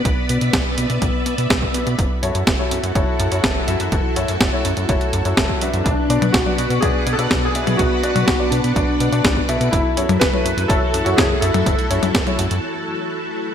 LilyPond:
<<
  \new Staff \with { instrumentName = "String machine" } { \time 4/4 \key b \minor \tempo 4 = 124 <b b' d'' e''>1 | <e' fis' a'>1~ | <e' fis' a'>1 | <b b' d'' fis''>1~ |
<b b' d'' fis''>1 | <e' fis' a'>1~ | <e' fis' a'>1 | }
  \new Staff \with { instrumentName = "Grand piano" } { \time 4/4 \key b \minor r1 | r8 <e' fis' a' cis''>16 r8 <e' fis' a' cis''>16 r8 <e' fis' a' cis''>8. <e' fis' a' cis''>8. <e' fis' a' e''>8~ | <e' fis' a' e''>8 <e' fis' a' cis''>16 r8 <e' fis' a' cis''>16 r8 <e' fis' a' cis''>8. <e' fis' a' cis''>8. <d' fis' b' e''>8~ | <d' fis' b' e''>8 <d' fis' b' d''>16 r8 <d' fis' b' d''>16 r8 <d' fis' b' d''>8. <d' fis' b' d''>8. <d' fis' b' e''>8~ |
<d' fis' b' e''>8 <d' fis' b' d''>16 r8 <d' fis' b' d''>16 r8 <d' fis' b' d''>8. <d' fis' b' d''>8. <e' fis' a' e''>8~ | <e' fis' a' e''>8 <e' fis' a' cis''>16 r8 <e' fis' a' cis''>16 r8 <e' fis' a' cis''>8. <e' fis' a' cis''>8. <e' fis' a' e''>8~ | <e' fis' a' e''>8 <e' fis' a' cis''>16 r8 <e' fis' a' cis''>16 r2 r8 | }
  \new Staff \with { instrumentName = "Electric grand piano" } { \time 4/4 \key b \minor r1 | r1 | r1 | d'4 fis'4 \tuplet 3/2 { gis'4 a'8~ a'8 gis'4 } |
fis'4 fis'8 d'4. r4 | e'4 b'4 a'8. fis'16 gis'8 a'8~ | a'8 r2. r8 | }
  \new Staff \with { instrumentName = "Analog synth bass" } { \clef bass \time 4/4 \key b \minor b,,16 r16 b,16 b,16 b,,16 r16 b,16 b,16 b,,16 r16 b,16 b,16 b,,16 r16 b,16 b,16 | fis,,16 r16 fis,16 fis,16 fis,,16 r16 fis,16 fis,16 fis,,16 r16 fis,16 fis,16 fis,,16 r16 fis,16 fis,16 | fis,,16 r16 fis,16 fis,16 fis,,16 r16 fis,16 fis,16 fis,,16 r16 fis,16 fis,16 fis,,16 r16 fis,16 fis,16 | b,,16 r16 b,16 b,16 b,,16 r16 b,16 b,16 b,,16 r16 b,16 b,16 b,,16 r16 b,16 b,16 |
b,,16 r16 b,16 b,16 b,,16 r16 b,16 b,16 b,,16 r16 b,16 b,16 b,,16 r16 b,16 b,16 | fis,,16 r16 fis,16 fis,16 fis,,16 r16 fis,16 fis,16 fis,,16 r16 fis,16 fis,16 fis,,16 r16 fis,16 fis,16 | fis,,16 r16 fis,16 fis,16 fis,,16 r16 fis,16 fis,16 r2 | }
  \new DrumStaff \with { instrumentName = "Drums" } \drummode { \time 4/4 <hh bd>8 hh16 hh16 <hh bd sn>8 hh16 hh16 <hh bd>8 hh16 hh16 <hh bd sn>16 bd16 hh16 hh16 | <hh bd>8 hh16 hh16 <hh bd sn>8 hh16 hh16 <hh bd>8 hh16 hh16 <hh bd sn>8 hh16 hh16 | <hh bd>8 hh16 hh16 <hh bd sn>8 hh16 hh16 <hh bd>16 hh16 hh16 hh16 <hh bd sn>16 bd16 hh16 hh16 | <hh bd>8 hh16 <hh tommh>16 <hh bd sn>16 tommh16 hh16 hh16 <hh bd>8 hh16 hh16 <hh bd sn>8 hh16 <hh tommh>16 |
<hh bd>8 hh16 <hh tommh>16 <hh bd sn>8 hh16 hh16 <hh bd>8 hh16 hh16 <hh bd sn>16 bd16 hh16 hh16 | <hh bd>8 hh16 <hh tommh>16 <hh bd sn>16 tommh16 hh16 hh16 <hh bd>8 hh16 hh16 <hh bd sn>8 hh16 <hh tommh>16 | <hh bd>16 hh16 hh16 <hh tommh>16 <hh bd sn>16 <hh tommh>16 hh16 hh16 r4 r4 | }
>>